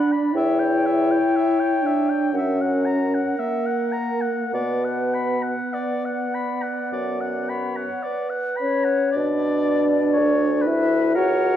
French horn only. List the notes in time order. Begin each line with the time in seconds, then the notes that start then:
Already playing: D4
0.33 E4
1.83 D4
2.34 C#4
3.39 A#3
4.55 B3
8.62 C#4
9.16 D4
10.66 E4
11.16 F#4